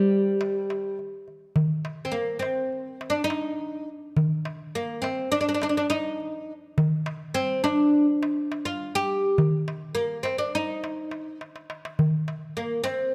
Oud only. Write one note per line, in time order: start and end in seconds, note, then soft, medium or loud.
0.00 0.97 G3 medium
2.05 2.13 C4 medium
2.12 2.39 A#3 medium
2.39 3.16 C4 medium
3.10 3.24 D4 medium
3.24 3.88 D#4 medium
4.75 5.05 A#3 medium
5.02 5.31 C4 medium
5.32 5.39 D4 medium
5.41 5.47 D4 medium
5.49 5.53 D4 medium
5.54 5.62 D4 medium
5.63 5.68 D4 medium
5.69 5.76 D4 medium
5.77 5.85 D4 medium
5.90 6.52 D#4 medium
7.34 7.62 C4 medium
7.64 8.05 D4 medium
8.65 8.95 F4 medium
8.95 9.36 G4 loud
9.95 10.25 A#3 medium
10.23 10.38 C4 medium
10.38 10.53 D4 medium
10.55 11.38 D#4 medium
12.57 12.83 A#3 medium
12.84 13.15 C4 medium